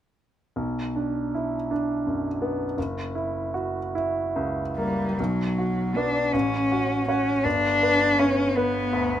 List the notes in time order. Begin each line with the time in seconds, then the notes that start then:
0.56 B1
0.96 D4
1.34 E4
1.71 D4
2.07 F#2
2.42 B3
2.78 F#1
3.15 E4
3.54 F#4
3.95 E4
4.36 C#2
4.78 G3 A#3
5.18 B1 F#3
5.58 F#4
5.96 D4 B4 D5
6.33 A1 C#4
6.72 F#4
7.08 C#4 C#5 F#5
7.44 G1 D4
7.83 B4
8.18 C#4 C#5
8.57 B3 B4
8.93 D2